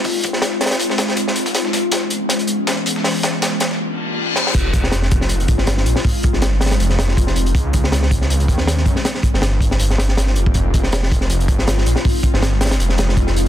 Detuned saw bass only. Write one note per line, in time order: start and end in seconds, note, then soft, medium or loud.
4.55 5.47 F1 loud
5.49 5.85 G1 medium
5.86 5.95 A#1 medium
6.34 6.78 G1 medium
6.80 7.53 F1 loud
7.55 8.47 C#2 loud
8.48 8.85 D#2 medium
8.86 8.95 F#2 loud
9.34 9.78 G1 medium
9.80 10.37 G1 medium
10.36 10.53 F1 medium
10.55 11.47 F1 loud
11.48 11.85 G1 medium
11.86 11.95 A#1 medium
12.34 12.78 G1 medium
12.80 13.48 F1 loud